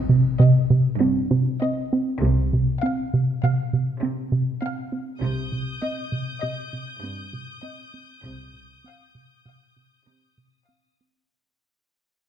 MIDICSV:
0, 0, Header, 1, 7, 480
1, 0, Start_track
1, 0, Tempo, 603015
1, 1762, Time_signature, 5, 2, 24, 8
1, 5585, Tempo, 611621
1, 9722, End_track
2, 0, Start_track
2, 0, Title_t, "Violin section"
2, 0, Program_c, 0, 48
2, 4148, Note_on_c, 0, 91, 42
2, 4151, Note_on_c, 0, 87, 39
2, 8186, Note_off_c, 0, 91, 0
2, 8674, Note_off_c, 0, 87, 0
2, 9722, End_track
3, 0, Start_track
3, 0, Title_t, "Violin section"
3, 0, Program_c, 1, 48
3, 0, Note_on_c, 1, 75, 33
3, 186, Note_off_c, 1, 75, 0
3, 316, Note_on_c, 1, 75, 35
3, 676, Note_off_c, 1, 75, 0
3, 1278, Note_on_c, 1, 75, 34
3, 1637, Note_off_c, 1, 75, 0
3, 2247, Note_on_c, 1, 77, 42
3, 2604, Note_off_c, 1, 77, 0
3, 2723, Note_on_c, 1, 77, 41
3, 3076, Note_off_c, 1, 77, 0
3, 3674, Note_on_c, 1, 77, 46
3, 4029, Note_off_c, 1, 77, 0
3, 4629, Note_on_c, 1, 75, 50
3, 4985, Note_off_c, 1, 75, 0
3, 5116, Note_on_c, 1, 75, 48
3, 5469, Note_off_c, 1, 75, 0
3, 6065, Note_on_c, 1, 75, 38
3, 6421, Note_off_c, 1, 75, 0
3, 7026, Note_on_c, 1, 77, 37
3, 7379, Note_off_c, 1, 77, 0
3, 7494, Note_on_c, 1, 77, 30
3, 7852, Note_off_c, 1, 77, 0
3, 8458, Note_on_c, 1, 77, 24
3, 8823, Note_off_c, 1, 77, 0
3, 9722, End_track
4, 0, Start_track
4, 0, Title_t, "Analog synth bass"
4, 0, Program_c, 2, 38
4, 73, Note_on_c, 2, 48, 48
4, 218, Note_off_c, 2, 48, 0
4, 314, Note_on_c, 2, 48, 67
4, 460, Note_off_c, 2, 48, 0
4, 559, Note_on_c, 2, 48, 46
4, 703, Note_off_c, 2, 48, 0
4, 799, Note_on_c, 2, 60, 55
4, 944, Note_off_c, 2, 60, 0
4, 1041, Note_on_c, 2, 48, 70
4, 1185, Note_off_c, 2, 48, 0
4, 1288, Note_on_c, 2, 60, 49
4, 1430, Note_off_c, 2, 60, 0
4, 1533, Note_on_c, 2, 60, 48
4, 1674, Note_off_c, 2, 60, 0
4, 1768, Note_on_c, 2, 48, 61
4, 1911, Note_off_c, 2, 48, 0
4, 2014, Note_on_c, 2, 48, 46
4, 2156, Note_off_c, 2, 48, 0
4, 2251, Note_on_c, 2, 60, 44
4, 2394, Note_off_c, 2, 60, 0
4, 2495, Note_on_c, 2, 48, 51
4, 2636, Note_off_c, 2, 48, 0
4, 2733, Note_on_c, 2, 48, 69
4, 2873, Note_off_c, 2, 48, 0
4, 2971, Note_on_c, 2, 48, 49
4, 3110, Note_off_c, 2, 48, 0
4, 3206, Note_on_c, 2, 60, 53
4, 3345, Note_off_c, 2, 60, 0
4, 3437, Note_on_c, 2, 48, 66
4, 3579, Note_off_c, 2, 48, 0
4, 3677, Note_on_c, 2, 60, 49
4, 3819, Note_off_c, 2, 60, 0
4, 3918, Note_on_c, 2, 60, 51
4, 4059, Note_off_c, 2, 60, 0
4, 4154, Note_on_c, 2, 48, 61
4, 4296, Note_off_c, 2, 48, 0
4, 4394, Note_on_c, 2, 48, 47
4, 4537, Note_off_c, 2, 48, 0
4, 4634, Note_on_c, 2, 60, 45
4, 4777, Note_off_c, 2, 60, 0
4, 4872, Note_on_c, 2, 48, 54
4, 5014, Note_off_c, 2, 48, 0
4, 5115, Note_on_c, 2, 48, 66
4, 5256, Note_off_c, 2, 48, 0
4, 5357, Note_on_c, 2, 48, 45
4, 5498, Note_off_c, 2, 48, 0
4, 5599, Note_on_c, 2, 60, 50
4, 5739, Note_off_c, 2, 60, 0
4, 5832, Note_on_c, 2, 48, 61
4, 5974, Note_off_c, 2, 48, 0
4, 6064, Note_on_c, 2, 60, 50
4, 6208, Note_off_c, 2, 60, 0
4, 6308, Note_on_c, 2, 60, 44
4, 6450, Note_off_c, 2, 60, 0
4, 6541, Note_on_c, 2, 48, 61
4, 6685, Note_off_c, 2, 48, 0
4, 6777, Note_on_c, 2, 48, 43
4, 6922, Note_off_c, 2, 48, 0
4, 7018, Note_on_c, 2, 60, 45
4, 7162, Note_off_c, 2, 60, 0
4, 7257, Note_on_c, 2, 48, 47
4, 7401, Note_off_c, 2, 48, 0
4, 7498, Note_on_c, 2, 48, 68
4, 7642, Note_off_c, 2, 48, 0
4, 7741, Note_on_c, 2, 48, 39
4, 7884, Note_off_c, 2, 48, 0
4, 7981, Note_on_c, 2, 60, 44
4, 8124, Note_off_c, 2, 60, 0
4, 8221, Note_on_c, 2, 48, 56
4, 8365, Note_off_c, 2, 48, 0
4, 8464, Note_on_c, 2, 60, 41
4, 8610, Note_off_c, 2, 60, 0
4, 8716, Note_on_c, 2, 60, 41
4, 8859, Note_off_c, 2, 60, 0
4, 9722, End_track
5, 0, Start_track
5, 0, Title_t, "Cello section"
5, 0, Program_c, 3, 48
5, 800, Note_on_c, 3, 43, 45
5, 1181, Note_off_c, 3, 43, 0
5, 1759, Note_on_c, 3, 48, 47
5, 2142, Note_off_c, 3, 48, 0
5, 3191, Note_on_c, 3, 48, 53
5, 3568, Note_off_c, 3, 48, 0
5, 4149, Note_on_c, 3, 48, 59
5, 4528, Note_off_c, 3, 48, 0
5, 5587, Note_on_c, 3, 43, 49
5, 5966, Note_off_c, 3, 43, 0
5, 6543, Note_on_c, 3, 48, 51
5, 6921, Note_off_c, 3, 48, 0
5, 7977, Note_on_c, 3, 48, 34
5, 8358, Note_off_c, 3, 48, 0
5, 9722, End_track
6, 0, Start_track
6, 0, Title_t, "Double bass section"
6, 0, Program_c, 4, 48
6, 1770, Note_on_c, 4, 36, 50
6, 2148, Note_off_c, 4, 36, 0
6, 4158, Note_on_c, 4, 36, 58
6, 4532, Note_off_c, 4, 36, 0
6, 6550, Note_on_c, 4, 36, 47
6, 6925, Note_off_c, 4, 36, 0
6, 9722, End_track
7, 0, Start_track
7, 0, Title_t, "Impact"
7, 0, Program_c, 5, 103
7, 0, Note_on_c, 5, 60, 35
7, 1762, Note_off_c, 5, 60, 0
7, 9722, End_track
0, 0, End_of_file